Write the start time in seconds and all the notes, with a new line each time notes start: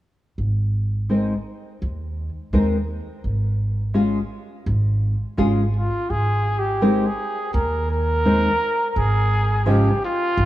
0.38 G#1
1.09 G#3 C4 D#4 A#4
1.82 D#2
2.53 D#2 G#3 C4 D#4 A#4
3.24 G#1
3.94 G#3 C#4 F4 G#4
4.66 G#1
5.37 G#1 G#3 C#4 F4 G#4
5.77 F4
6.10 G#1 G#4
6.59 G4
6.82 G#3 C4 D#4 A#4
7.07 G#4
7.54 D#2 A#4
7.92 A#4
8.25 G#3 C4 D#4 A#4
8.90 A#4
8.96 G#1 G#4
9.66 G#2 C#3 F3 G#3 C#4 F4 G4
10.05 F4
10.37 G#1